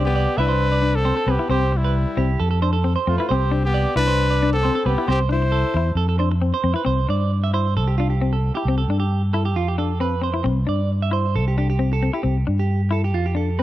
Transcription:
Already playing: C2 D5
0.05 B3 G4
0.16 D5
0.38 C2 D4 E4 B4 E5
0.48 C5
0.72 D5
0.82 D4
0.95 C4 A4
1.05 C4 C5
1.17 A4
1.27 C2 B3 C4 B4
1.31 G4
1.39 E4
1.49 C2 C4 G4 C5
1.72 G3, muted clean electric guitar stroke
1.77 E4
1.84 B4
2.17 C2 C4 G4
2.40 F2 A4
2.51 A4
2.62 D4 C5
2.73 A4
2.84 C4
2.96 C5
3.07 F2 A3 C4 F4
3.18 E4 B4
3.29 C2 C4 G4 C5
3.51 D4
3.65 B3 G4
3.74 D5
3.96 C2 D4 E4 B4
4.07 C5
4.30 D5
4.43 D4
4.53 C4 A4
4.63 C4 C5
4.75 A4
4.86 C2 B3 C4 G4 B4
4.98 E4
5.08 C2 C4 G4 C5
5.29 D4 E4 C5
5.42 muted clean electric guitar stroke
5.52 A4
5.74 E2 E4, muted clean electric guitar stroke
5.95 F2 A4
6.09 A4
6.19 D4 C5
6.32 muted clean electric guitar stroke
6.42 C4
6.54 C5
6.64 F2 C4
6.74 E4 B4
6.85 C2 C4 C5
7.09 G2 D4 D5
7.44 E5
7.54 E4 C5
7.77 C2 A4
7.88 G4
7.98 D4 F4
8.10 G4
8.21 C4
8.33 A4
8.55 E4 G4
8.65 C2 C4
8.78 A4
8.88 G2 D4
9.00 G4
9.33 E4 A4
9.45 G4
9.56 F2 F4
9.68 G4
9.78 D4 A4
10.00 C4 B4
10.22 C4 C5
10.34 E4
10.44 C2 C4, muted clean electric guitar stroke
10.67 G2 D4 D5
11.02 E5
11.11 E4 C5
11.35 C2 A4
11.48 G4
11.58 D4 G4
11.70 G4
11.79 C4
11.93 A4
12.03 C4
12.13 E4 G4
12.23 C2 C4
12.47 G2 D4
12.59 G4
12.91 E4 A4
13.04 G4
13.14 F2 F4
13.26 G4
13.35 D4 A4
13.59 C4 B4

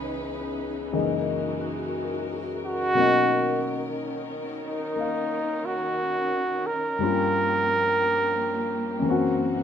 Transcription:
Already playing: C#2 C#3 E3 B3 C#4 D#4 B4
0.92 F#2 C#3 E3 G#3 A#3 D#4 F#4 A#4
2.65 F#4
2.94 B2 D#3 F#3 A#3 C#4
2.99 D#4
4.68 D#4
4.96 A#3 D#4 F5
5.66 F#4
6.66 A#4
6.99 G2 F3 G3 A#3 C#4 G4
7.03 F4
8.99 F#2 E3
9.04 E3 A#3 C4 F#4
9.10 F#4

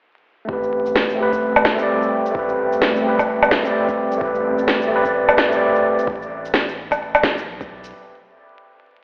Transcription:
0.45 A1 G3 A3 C4, kick
0.50 G4 B4
0.63 shaker
0.86 shaker
0.96 snare
1.10 shaker
1.15 A3 C4
1.20 G4 B4
1.32 kick, shaker
1.56 low woodblock, shaker
1.65 G1, kick, snare, low woodblock
1.75 A3 C4, shaker
1.80 G4 D5
2.03 shaker
2.26 shaker
2.31 A3 C4
2.35 A1 G4 B4, kick
2.49 shaker
2.72 shaker
2.82 snare
2.96 shaker
3.01 A3 C4
3.06 G4 B4
3.19 kick, low woodblock, shaker
3.43 low woodblock, shaker
3.51 kick, snare
3.62 A3 C4, shaker
3.67 G4 D5
3.89 kick, shaker
4.12 shaker
4.17 A1 A3 C4 D5, kick
4.23 G4 B4
4.35 shaker
4.58 shaker
4.68 snare
4.82 shaker
4.88 A3 C4
4.93 G4 B4
5.05 kick, shaker
5.29 low woodblock, shaker
5.37 G1, kick, snare, low woodblock
5.49 A3 C4, shaker
5.54 G4 D5
5.75 shaker
5.99 shaker
6.07 A1, kick
6.22 shaker
6.45 shaker
6.54 snare
6.69 shaker
6.91 kick, low woodblock, shaker
7.15 low woodblock, shaker
7.23 kick, snare
7.38 shaker
7.48 B1
7.61 kick, shaker
7.84 shaker

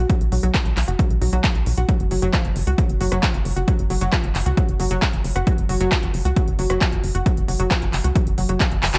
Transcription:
0.10 F#3, kick, closed hi-hat
0.21 B1, closed hi-hat
0.32 B1 F#3, open hi-hat
0.43 B1 F#3, closed hi-hat
0.54 F3, kick, clap, closed hi-hat
0.65 B1, closed hi-hat
0.77 B1, clap, open hi-hat
0.88 F#1 F#4, closed hi-hat
0.99 F#3, kick, closed hi-hat
1.10 B1, closed hi-hat
1.21 B1 F#3, open hi-hat
1.33 B1 F#3, closed hi-hat
1.44 F3, kick, clap, closed hi-hat
1.55 B1, closed hi-hat
1.66 B1, open hi-hat
1.77 B1 F#4, closed hi-hat
1.89 F#3, kick, closed hi-hat
2.00 F#1, closed hi-hat
2.11 F#1 F#3, open hi-hat
2.22 F#1 F#3, closed hi-hat
2.33 F3, kick, cross-stick, clap, closed hi-hat
2.45 F#1, closed hi-hat
2.56 F#1, open hi-hat
2.67 C#2 F#4, closed hi-hat
2.78 F#3, kick, closed hi-hat
2.89 F#1, closed hi-hat
3.01 F#1 F#3, open hi-hat
3.12 F#1 F#3, cross-stick, closed hi-hat
3.23 F3, kick, clap, closed hi-hat
3.34 F#1, closed hi-hat
3.45 F#1, open hi-hat
3.56 F#1 F#4, closed hi-hat
3.68 F#3, kick, closed hi-hat
3.79 F#1, closed hi-hat
3.90 F#1 F#3, open hi-hat
4.01 F#1 F#3, closed hi-hat
4.12 F3, kick, cross-stick, clap, closed hi-hat
4.24 F#1, closed hi-hat
4.35 F#1, clap, open hi-hat
4.46 C#2 F#4, closed hi-hat
4.57 F#3, kick, closed hi-hat
4.68 F#1, closed hi-hat
4.80 F#1 F#3, open hi-hat
4.91 F#1 F#3, closed hi-hat
5.02 F3, kick, clap, closed hi-hat
5.13 F#1, closed hi-hat
5.24 F#1, open hi-hat
5.36 F#1 F#4, cross-stick, closed hi-hat
5.47 F#3, kick, closed hi-hat
5.58 F#1, closed hi-hat
5.69 F#1 F#3, open hi-hat
5.80 F#1 F#3, closed hi-hat
5.92 kick, cross-stick, clap, closed hi-hat
6.03 F#1, closed hi-hat
6.14 F#1, open hi-hat
6.25 C#2 F#4, closed hi-hat
6.36 F#3, kick, closed hi-hat
6.47 F#1, closed hi-hat
6.59 F#1 F#3, open hi-hat
6.70 F#1 F#3, cross-stick, closed hi-hat
6.81 F3, kick, clap, closed hi-hat
6.92 F#1, closed hi-hat
7.03 F#1, open hi-hat
7.15 F#1 F#4, closed hi-hat
7.26 F#3, kick, closed hi-hat
7.37 F#1, closed hi-hat
7.48 F#1 F#3, open hi-hat
7.60 F#1 F#3, closed hi-hat
7.71 F3, kick, cross-stick, clap, closed hi-hat
7.82 F#1, closed hi-hat
7.93 F#1, clap, open hi-hat
8.04 C#2 F#4, closed hi-hat
8.16 F#3, kick, closed hi-hat
8.27 F#1, closed hi-hat
8.38 F#1 F#3, open hi-hat
8.49 F#1 F#3, closed hi-hat
8.60 F3, kick, clap, closed hi-hat
8.71 F#1, closed hi-hat
8.83 F#1, clap, open hi-hat
8.94 F#1 F#4, clap, closed hi-hat

